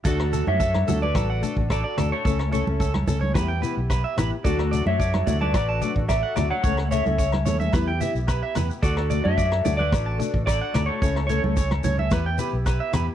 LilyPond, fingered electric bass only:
\new Staff \with { instrumentName = "Fingered electric bass" } { \clef bass \time 4/4 \key d \major \tempo 4 = 110 d,8. fis,8. d,8 a,,8 r16 a,,8 r16 d,16 r16 | cis,8. cis,8. cis,8 e,8 r16 b,,8 r16 a,,16 r16 | d,8. fis,8. d,8 a,,8 r16 a,,8 r16 d,16 r16 | cis,8. cis,8. ees,8 e,8 r16 b,,8 r16 e,16 r16 |
d,8. fis,8. d,8 a,,8 r16 a,,8 r16 d,16 r16 | cis,8. cis,8. cis,8 e,8 r16 b,,8 r16 e,16 r16 | }